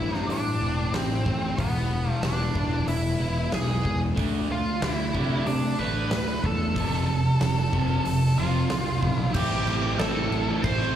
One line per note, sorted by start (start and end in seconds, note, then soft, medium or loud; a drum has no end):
0.00 0.22 G2 medium
0.00 0.26 A2 medium
0.00 0.61 A2 medium
0.00 0.26 E3 medium
0.00 0.26 A3 medium
0.00 0.27 A3 medium
0.00 0.59 C4 medium
0.00 0.25 E4 medium
0.00 0.91 E4 medium
0.00 0.17 E5 medium
0.14 0.31 D5 medium
0.14 snare soft
0.27 0.54 G2 medium
0.27 0.57 A2 medium
0.27 0.58 E3 medium
0.27 1.24 A3 medium
0.27 0.90 D4 medium
0.27 open hi-hat medium
0.31 0.97 D5 medium
0.59 0.86 E1 medium
0.59 0.91 A2 medium
0.59 0.91 E3 medium
0.59 0.91 A3 loud
0.59 1.58 C4 medium
0.92 1.19 A1 medium
0.92 1.23 A2 medium
0.92 1.23 E3 medium
0.92 1.55 C4 medium
0.92 1.58 E4 medium
0.92 1.59 C5 medium
0.92 snare loud
0.92 open hi-hat medium
1.25 1.52 A1 medium
1.25 1.55 A2 medium
1.25 1.55 E3 medium
1.25 1.58 A3 medium
1.25 kick medium
1.58 2.10 E1 medium
1.58 1.88 E2 medium
1.58 1.89 B2 loud
1.58 3.20 E3 medium
1.58 1.89 E3 loud
1.58 2.20 B3 medium
1.58 2.10 B4 medium
1.58 kick loud
1.58 open hi-hat medium
1.75 snare soft
1.90 2.20 E2 medium
1.90 2.20 B2 medium
1.90 2.86 G#3 medium
2.10 2.26 A4 medium
2.22 2.48 E1 medium
2.22 2.52 E2 medium
2.22 2.52 B2 medium
2.22 3.17 B3 medium
2.22 2.85 D4 medium
2.22 2.85 D5 medium
2.22 snare loud
2.22 open hi-hat medium
2.54 2.81 E1 medium
2.54 2.85 E2 medium
2.54 2.85 B2 medium
2.54 2.86 E3 medium
2.54 3.51 E4 medium
2.54 kick medium
2.86 3.14 E1 medium
2.86 3.16 E2 medium
2.86 3.17 B2 medium
2.86 3.82 G#3 medium
2.86 3.49 E4 medium
2.86 3.49 E5 loud
2.86 open hi-hat medium
3.18 3.46 E1 medium
3.18 3.50 E2 medium
3.18 3.50 B2 loud
3.18 3.51 E3 loud
3.18 4.17 B3 medium
3.51 3.79 B1 medium
3.51 3.81 E2 medium
3.51 3.81 B2 medium
3.51 4.17 E4 medium
3.51 3.99 G#4 medium
3.51 3.99 G#5 medium
3.51 snare medium
3.51 open hi-hat medium
3.83 4.13 E2 medium
3.83 4.11 E2 medium
3.83 4.13 B2 medium
3.83 4.17 G#3 medium
3.83 kick medium
4.15 4.69 D2 medium
4.15 4.47 D3 medium
4.15 4.47 A3 medium
4.15 4.47 D4 loud
4.15 kick medium
4.15 open hi-hat soft
4.48 4.78 D3 medium
4.48 4.78 A3 medium
4.48 4.81 F4 medium
4.48 4.82 F5 medium
4.80 5.08 D2 medium
4.80 5.11 D3 medium
4.80 5.11 A3 medium
4.80 5.44 E4 medium
4.80 5.43 E5 medium
4.80 snare loud
4.80 open hi-hat medium
5.13 5.41 C3 medium
5.13 5.44 D3 medium
5.13 5.45 A3 medium
5.13 5.45 D4 medium
5.13 kick medium
5.46 5.73 C3 loud
5.46 5.75 D3 medium
5.46 5.76 A3 medium
5.46 5.78 D4 medium
5.46 5.80 D5 loud
5.46 open hi-hat medium
5.78 6.05 A1 loud
5.78 6.09 D3 loud
5.78 6.10 A3 loud
5.78 6.10 D4 loud
5.78 6.40 B4 medium
5.78 6.46 B5 loud
6.11 6.37 D2 medium
6.11 6.41 D3 medium
6.11 6.41 A3 medium
6.11 snare loud
6.11 open hi-hat medium
6.44 6.78 E2 loud
6.44 6.73 D3 medium
6.44 6.73 A3 medium
6.44 8.67 A4 medium
6.44 8.67 A5 medium
6.44 kick medium
6.76 7.28 F1 medium
6.76 7.07 F2 loud
6.76 7.07 C3 loud
6.76 7.08 F3 loud
6.76 kick loud
6.76 open hi-hat medium
6.93 snare soft
7.09 7.38 F2 medium
7.09 7.38 C3 medium
7.41 7.67 F1 medium
7.41 7.70 F2 medium
7.41 7.70 C3 medium
7.41 snare loud
7.41 open hi-hat medium
7.72 7.99 F1 medium
7.72 8.03 F2 medium
7.72 8.04 C3 medium
7.72 8.04 F3 medium
7.72 kick medium
8.04 8.31 F1 medium
8.04 8.34 F2 medium
8.04 8.34 C3 medium
8.04 open hi-hat medium
8.37 8.64 F1 loud
8.37 8.68 F2 loud
8.37 8.68 C3 medium
8.37 8.69 F3 loud
8.37 9.31 F4 medium
8.37 9.05 F5 medium
8.70 8.96 C2 medium
8.70 8.99 F2 medium
8.70 8.99 C3 medium
8.70 snare loud
8.70 open hi-hat medium
9.01 9.28 B1 loud
9.01 9.31 F2 medium
9.01 9.31 C3 medium
9.01 kick medium
9.05 9.38 E5 medium
9.32 9.65 A1 loud
9.32 9.96 A2 loud
9.32 9.98 E3 loud
9.32 9.83 A3 loud
9.32 9.82 C4 loud
9.32 9.96 G4 medium
9.32 9.99 G5 loud
9.32 kick loud
9.32 crash loud
9.32 crash medium
9.36 9.81 E4 loud
9.66 9.97 A1 loud
9.66 9.99 E3 medium
9.66 9.99 A3 medium
9.66 10.00 C4 medium
9.66 crash medium
9.70 10.01 E4 medium
9.82 9.98 A3 medium
9.82 9.98 C4 medium
9.82 10.00 E4 medium
9.97 10.29 A1 medium
9.97 10.62 A2 medium
9.97 10.30 E3 medium
9.97 10.30 A3 loud
9.97 10.31 C4 loud
9.97 10.33 E4 medium
9.97 10.60 A4 medium
9.97 10.65 A5 loud
9.97 snare loud
9.97 crash medium
10.30 10.61 A1 medium
10.30 10.47 E3 medium
10.30 10.46 A3 medium
10.30 10.46 C4 medium
10.30 10.46 E4 medium
10.30 muted distorted electric guitar stroke medium
10.30 crash medium
10.47 10.80 C4 medium
10.47 10.78 E4 medium
10.47 muted distorted electric guitar stroke medium
10.51 10.82 A3 medium
10.64 10.94 A1 loud
10.64 10.96 C5 medium
10.64 10.96 C6 loud
10.64 kick loud
10.64 crash medium
10.78 10.94 A3 medium
10.78 10.95 C4 medium
10.78 10.96 E4 medium
10.78 snare soft